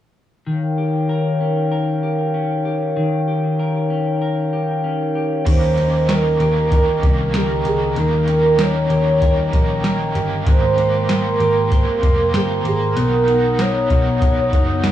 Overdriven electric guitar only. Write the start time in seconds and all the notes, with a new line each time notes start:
5.46 D#3 G3 A#3 C#4 G4 A#4
5.77 A#3 C#4 G4 A#4
6.08 A#3 C#4 G4 A#4
6.39 A#3 C#4 G4 A#4
6.71 D#3 G3 A#3 C#4 G4 A#4
7.02 A#3 C#4 G4 A#4
7.33 A#3 C#4 G4 A#4
7.66 A#3 C#4 A#4
7.96 D#3 G3 A#3 C#4 G4 A#4
8.27 A#3 C#4 G4 A#4
8.59 A#3 C#4 G4 A#4
8.90 A#3 C#4 G4 A#4
9.21 D#3 G3 A#3 C#4 G4 A#4
9.53 A#3 C#4 G4 A#4
9.84 A#3 C#4 G4 A#4
10.15 A#3 C#4 G4 A#4
10.46 G#3 A#3 C4 G4 A#4
10.77 A#3 G4 A#4
11.08 A#3 C4 G4 A#4
11.40 A#3 G4 A#4
11.71 G#3 A#3 C4 G4 A#4
12.02 A#3 G4 A#4
12.33 A#3 C4 G4 A#4
12.66 A#3 A#4
12.96 B3 D#4 F#4 A#4
13.27 D#4 F#4 A#4
13.58 B3 D#4 F#4 A#4
13.90 D#4 F#4 A#4
14.21 B3 D#4 F#4 A#4
14.52 D#4 F#4 A#4
14.84 B3 D#4 F#4 A#4